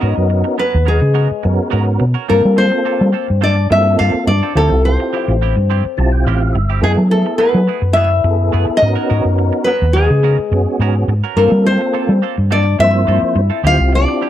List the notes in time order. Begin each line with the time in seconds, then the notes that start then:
Already playing: B3 C#4 D#4 F#4 A#4 D#5
0.01 G#2 B3 C#4 F#4 A#4
0.16 F#2, muted clean electric guitar stroke
0.30 muted clean electric guitar stroke
0.44 muted clean electric guitar stroke
0.58 B3 C#4 F#4 A#4 B4
0.74 D#2
0.85 G#3 B3 C#4 F#4 G#4 A#4
1.01 C#3, muted clean electric guitar stroke
1.14 B3 C#4 F#4 A#4
1.30 muted clean electric guitar stroke, muted fingered electric bass stroke
1.43 F#2 B3 C#4 F#4 A#4, muted clean electric guitar stroke
1.70 G#2 B3 C#4 F#4 A#4
1.86 muted clean electric guitar stroke
1.99 B2, muted clean electric guitar stroke
2.14 C#4 F#4 A#4
2.28 G2 A#3 C4 F4 A4 A#4
2.43 G3, muted clean electric guitar stroke
2.56 C4 C5, muted clean electric guitar stroke
2.72 muted clean electric guitar stroke
2.85 A#3 C4 F4 A4
3.01 G3
3.12 A#3 C4 F4 A4
3.28 G2, muted clean electric guitar stroke
3.41 A#3 C4 D4 F4 A4 D5
3.57 muted clean electric guitar stroke
3.70 G2 A#3 C4 E4 F4 A4 E5, muted clean electric guitar stroke
3.99 G2 A#3 C4 F4 A4 F5
4.14 muted fingered electric bass stroke, muted clean electric guitar stroke
4.27 G2 D4 D5, muted clean electric guitar stroke
4.43 C4 F4 A4
4.55 D2 F3 A3 C4 E4 F4 G4 A4
4.71 C2, muted clean electric guitar stroke
4.85 C4 C5, muted clean electric guitar stroke
5.00 muted clean electric guitar stroke
5.13 F3 C4 E4 G4
5.28 A1
5.42 F3 C4 E4 G4
5.56 G2
5.70 F3 C4 E4 G4
5.85 muted fingered electric bass stroke, muted clean electric guitar stroke
5.97 B1 C4 E4 F4 G4 A5, muted clean electric guitar stroke
6.12 G5
6.25 A1 F3 C4 E4 G4 F5
6.42 muted clean electric guitar stroke
6.53 G1 E5, muted clean electric guitar stroke
6.70 C4 E4 G4
6.81 F#2 G#3 A3 B3 E4 G#4 A4
6.98 F#3, muted clean electric guitar stroke
7.11 A3 A4, muted clean electric guitar stroke
7.26 muted clean electric guitar stroke
7.38 A3 B3 E4 G#4 B4
7.55 F#3
7.67 A3 B3 E4 G#4
7.82 F#2, muted clean electric guitar stroke
7.93 A3 B3 E4 G#4 E5
8.11 muted clean electric guitar stroke
8.24 F#2 B3 E4 G#4 A4, muted clean electric guitar stroke
8.52 F#2 A3 B3 E4 G#4
8.67 muted clean electric guitar stroke, muted fingered electric bass stroke
8.77 D#4 D#5
8.81 G#2 B3 C#4 F#4 A#4, muted clean electric guitar stroke
8.95 C#4 F#4 A#4
9.09 G#2 B3 C#4 F#4 A#4
9.25 F#2, muted clean electric guitar stroke
9.38 muted clean electric guitar stroke
9.53 muted clean electric guitar stroke
9.64 B3 C#4 F#4 A#4 B4
9.82 D#2
9.93 G#3 B3 C#4 F#4 G#4 A#4
10.10 C#3, muted clean electric guitar stroke
10.23 B3 C#4 F#4 A#4
10.38 muted clean electric guitar stroke, muted fingered electric bass stroke
10.51 F#2 B3 C#4 F#4 G#4, muted clean electric guitar stroke
10.79 G#2 B3 C#4 F#4 A#4
10.95 muted clean electric guitar stroke
11.08 G#2, muted clean electric guitar stroke
11.24 C#4 F#4 A#4
11.37 G2 A#3 C4 F4 A4 A#4
11.52 G3
11.66 C4 C5, muted clean electric guitar stroke
11.81 muted clean electric guitar stroke
11.93 A#3 C4 F4 A4
12.09 G3
12.22 A#3 C4 F4 A4
12.37 G2, muted clean electric guitar stroke
12.51 A#3 C4 D4 F4 A4 D5
12.65 muted clean electric guitar stroke
12.78 G2 F3 A#3 C4 E4 C5 E5, muted clean electric guitar stroke
13.07 G2 A#3 C4 F4 A4
13.22 muted clean electric guitar stroke, muted fingered electric bass stroke
13.35 G2, muted clean electric guitar stroke
13.50 C4 F4 A4
13.63 D2 F3 C4 E4 F4 G4 F5
13.79 C2
13.92 D4 D5, muted clean electric guitar stroke
14.08 muted clean electric guitar stroke
14.21 F3 C4 E4 G4